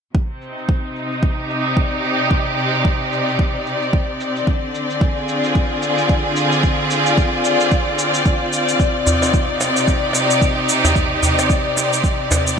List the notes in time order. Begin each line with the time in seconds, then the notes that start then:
0.15 C3, kick
0.29 C4
0.42 cabasa
0.50 D#4
0.58 cabasa
0.69 kick
0.96 cabasa
1.12 cabasa
1.23 G4, kick
1.50 cabasa
1.66 cabasa
1.71 D5
1.77 kick
2.04 cabasa
2.20 cabasa
2.31 kick, cabasa
2.58 cabasa
2.74 cabasa
2.85 kick, cabasa
3.12 cabasa
3.28 cabasa
3.39 kick, cabasa
3.66 cabasa
3.82 cabasa
3.93 kick, cabasa
4.20 cabasa
4.36 cabasa
4.47 D3, kick, cabasa
4.75 cabasa
4.90 cabasa
4.98 G#4, kick, cabasa
5.17 F4
5.28 cabasa
5.44 cabasa
5.55 kick, cabasa
5.82 cabasa
5.98 cabasa
6.09 kick, cabasa
6.36 cabasa
6.52 cabasa
6.63 kick, cabasa
6.90 cabasa
7.06 cabasa
7.18 kick, cabasa
7.44 cabasa
7.60 cabasa
7.71 kick, cabasa
7.99 cabasa
8.14 cabasa
8.26 kick, cabasa
8.53 cabasa
8.68 cabasa
8.80 C3, kick, cabasa
8.99 D#4
9.07 darbuka dum, cabasa
9.22 darbuka ka, darbuka tek, cabasa
9.34 kick, cabasa
9.49 G4
9.61 darbuka tek, cabasa
9.76 cabasa
9.88 kick, darbuka tek, cabasa
10.13 darbuka tek, cabasa
10.30 cabasa
10.42 kick, cabasa
10.57 darbuka ka
10.69 cabasa
10.85 darbuka ka, darbuka tek, darbuka dum, cabasa
10.96 kick, cabasa
11.23 darbuka dum, cabasa
11.39 darbuka ka, darbuka tek, cabasa
11.50 kick, cabasa
11.77 darbuka tek, cabasa
11.93 cabasa
12.04 kick, cabasa
12.31 darbuka tek, darbuka dum, cabasa
12.47 cabasa